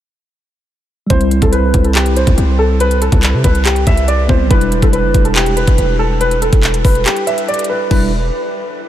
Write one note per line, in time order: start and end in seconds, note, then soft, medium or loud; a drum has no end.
1.07 1.41 C2 loud
1.07 4.23 G3 medium
1.07 4.25 C4 medium
1.07 1.40 C5 loud
1.07 kick loud
1.07 closed hi-hat medium
1.13 4.27 E4 medium
1.21 closed hi-hat medium
1.31 closed hi-hat medium
1.42 1.73 C2 loud
1.42 1.51 A4 medium
1.42 kick medium
1.42 closed hi-hat medium
1.52 1.82 B4 medium
1.52 closed hi-hat medium
1.74 2.25 C2 loud
1.74 kick medium
1.74 closed hi-hat medium
1.84 1.93 A4 medium
1.84 closed hi-hat medium
1.95 2.12 G4 medium
1.95 clap loud
1.95 closed hi-hat medium
2.06 closed hi-hat medium
2.16 2.57 C5 medium
2.16 closed hi-hat medium
2.27 2.37 C2 loud
2.27 kick medium
2.27 closed hi-hat medium
2.38 3.09 C2 loud
2.38 closed hi-hat medium
2.59 2.76 A4 medium
2.80 2.97 B4 loud
2.80 closed hi-hat medium
2.91 closed hi-hat medium
3.02 3.42 A4 medium
3.02 closed hi-hat medium
3.12 3.35 C2 loud
3.12 kick loud
3.12 closed hi-hat medium
3.23 clap medium
3.23 closed hi-hat medium
3.33 3.44 C3 loud
3.44 3.85 C2 loud
3.44 3.61 B4 medium
3.44 kick medium
3.44 closed hi-hat medium
3.55 closed hi-hat medium
3.65 3.82 G4 medium
3.65 clap loud
3.65 closed hi-hat medium
3.76 closed hi-hat medium
3.87 4.28 C2 loud
3.87 4.04 E5 medium
3.87 kick loud
3.87 closed hi-hat medium
3.97 closed hi-hat medium
4.08 4.25 D5 medium
4.08 closed hi-hat medium
4.28 4.50 C2 loud
4.28 4.50 B3 medium
4.28 4.51 C4 soft
4.28 4.52 E4 medium
4.28 4.46 C5 medium
4.28 kick loud
4.47 4.81 E1 loud
4.47 7.85 G3 medium
4.47 7.87 D4 medium
4.47 4.80 B4 loud
4.47 kick loud
4.47 closed hi-hat medium
4.54 7.89 E4 medium
4.61 closed hi-hat medium
4.72 closed hi-hat loud
4.82 5.05 E1 loud
4.82 4.91 A4 medium
4.82 kick medium
4.82 closed hi-hat medium
4.93 5.23 B4 medium
4.93 closed hi-hat medium
5.04 5.14 F#1 loud
5.14 5.65 E1 loud
5.14 kick medium
5.14 closed hi-hat medium
5.25 5.33 A4 medium
5.25 closed hi-hat medium
5.36 5.53 G4 medium
5.36 clap loud
5.36 closed hi-hat medium
5.46 closed hi-hat medium
5.57 5.97 B4 medium
5.57 closed hi-hat medium
5.67 5.78 E1 loud
5.67 kick medium
5.67 closed hi-hat medium
5.78 6.50 E1 loud
5.78 closed hi-hat medium
5.99 6.16 A4 medium
6.21 6.38 B4 loud
6.21 closed hi-hat medium
6.31 closed hi-hat medium
6.42 6.82 A4 medium
6.42 closed hi-hat medium
6.53 6.83 E1 loud
6.53 kick medium
6.53 closed hi-hat medium
6.63 clap medium
6.63 closed hi-hat medium
6.74 closed hi-hat medium
6.85 7.05 E1 loud
6.85 7.02 B4 medium
6.85 kick medium
6.85 open hi-hat medium
6.95 closed hi-hat medium
7.06 7.23 G4 medium
7.06 clap loud
7.06 closed hi-hat medium
7.16 closed hi-hat medium
7.27 7.44 E5 medium
7.27 closed hi-hat medium
7.38 closed hi-hat medium
7.48 7.65 D5 medium
7.48 closed hi-hat soft
7.54 closed hi-hat medium
7.59 closed hi-hat medium
7.64 closed hi-hat medium
7.69 7.87 B4 medium
7.91 8.31 E1 loud
7.91 8.11 G3 medium
7.91 8.11 D4 medium
7.91 8.11 E4 medium
7.91 8.11 B4 medium
7.91 kick loud
7.91 crash medium